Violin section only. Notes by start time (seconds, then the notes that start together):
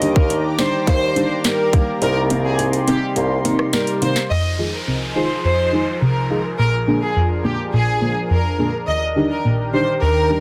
0.16 A#4
0.59 C5
0.88 C5
1.45 A#4
2.02 A#4
2.45 G#4
2.87 G4
3.73 A#4
4.02 C5
4.30 D#5
4.73 A#4
5.16 C5
5.44 C5
6.02 A#4
6.59 A#4
7.02 G#4
7.44 G4
7.73 G#4
8.30 A#4
8.87 D#5
9.30 A#4
9.73 C5
10.02 A#4